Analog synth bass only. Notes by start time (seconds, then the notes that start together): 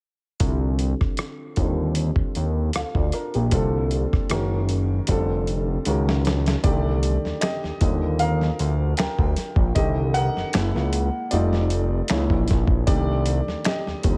0.41 C2
1.58 D#2
2.16 D#2
2.36 D#2
2.75 D2
2.95 D2
3.35 A#1
3.53 C2
4.32 F#1
5.10 F1
5.87 C#2
6.65 C2
7.26 D#2
7.64 D#2
7.82 D#2
8.60 D2
8.99 D2
9.19 D2
9.57 A#1
9.76 C2
10.37 F#1
10.55 F#1
10.76 C#2
11.33 F1
12.11 C#2
12.31 A#1
12.51 A#1
12.88 C2
13.48 D#2
13.88 D#2
14.05 D#2